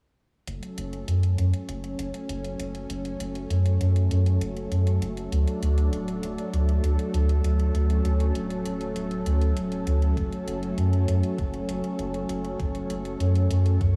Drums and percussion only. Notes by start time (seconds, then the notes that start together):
0.47 closed hi-hat
0.63 closed hi-hat
0.78 closed hi-hat
0.93 closed hi-hat
1.08 closed hi-hat
1.23 closed hi-hat
1.38 closed hi-hat
1.54 closed hi-hat
1.69 closed hi-hat
1.84 closed hi-hat
1.99 closed hi-hat
2.14 closed hi-hat
2.29 closed hi-hat
2.44 closed hi-hat
2.60 closed hi-hat
2.75 closed hi-hat
2.90 closed hi-hat
3.05 closed hi-hat
3.20 closed hi-hat
3.35 closed hi-hat
3.50 closed hi-hat
3.66 closed hi-hat
3.81 closed hi-hat
3.96 closed hi-hat
4.11 closed hi-hat
4.26 closed hi-hat
4.41 closed hi-hat
4.57 closed hi-hat
4.72 closed hi-hat
4.87 closed hi-hat
5.02 closed hi-hat
5.17 closed hi-hat
5.32 closed hi-hat
5.48 closed hi-hat
5.63 closed hi-hat
5.78 closed hi-hat
5.93 closed hi-hat
6.08 closed hi-hat
6.23 closed hi-hat
6.38 closed hi-hat
6.54 closed hi-hat
6.69 closed hi-hat
6.84 closed hi-hat
6.99 closed hi-hat
7.14 closed hi-hat
7.29 closed hi-hat
7.44 closed hi-hat
7.60 closed hi-hat
7.75 closed hi-hat
7.90 closed hi-hat
8.05 closed hi-hat
8.20 closed hi-hat
8.35 closed hi-hat
8.50 closed hi-hat
8.65 closed hi-hat
8.81 closed hi-hat
8.96 closed hi-hat
9.11 closed hi-hat
9.26 closed hi-hat
9.41 closed hi-hat
9.57 closed hi-hat
9.72 closed hi-hat
9.87 closed hi-hat
10.02 closed hi-hat
10.17 kick, closed hi-hat
10.32 closed hi-hat
10.48 closed hi-hat
10.63 closed hi-hat
10.78 closed hi-hat
10.93 closed hi-hat
11.08 closed hi-hat
11.23 closed hi-hat
11.38 kick, closed hi-hat
11.54 closed hi-hat
11.69 closed hi-hat
11.84 closed hi-hat
11.99 closed hi-hat
12.14 closed hi-hat
12.29 closed hi-hat
12.45 closed hi-hat
12.60 kick, closed hi-hat
12.75 closed hi-hat
12.90 closed hi-hat
13.05 closed hi-hat
13.20 closed hi-hat
13.35 closed hi-hat
13.51 closed hi-hat
13.66 closed hi-hat
13.81 kick, closed hi-hat